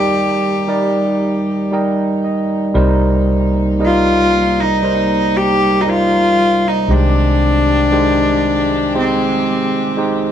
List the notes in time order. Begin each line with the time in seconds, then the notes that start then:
Already playing: D#2 D#3 G3 D#4 G4 A#4 D5
0.68 G3 D#4 A#4 D5
1.72 G3 D#4 A#4 D#5 G5
2.24 D#5
2.74 C2 C3 G3 A#3 D#4 A#4 C5
3.80 G3 D#4 A#4 D#5
3.85 F4
4.60 D#4
4.82 G3 D#4 A#4 C5
5.37 G4
5.81 D#4
5.87 G3 D#4 F4 A#4 C5
6.68 D#4
6.88 C2 C3 D#3 G#3 G4 C5
6.93 D4
7.92 D#3 G#3 G4 C5
8.94 G#3 C4 D#4 G4 C5
9.97 G#3 D#4 G4 C5